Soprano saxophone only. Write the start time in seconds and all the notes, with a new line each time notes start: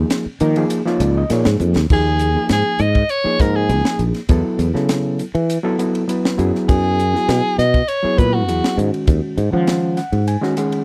1.93 G#4
2.52 G#4
2.81 D#5
3.10 C#5
3.41 A#4
3.56 G#4
6.68 G#4
7.59 D#5
7.88 C#5
8.18 B4
8.34 F#4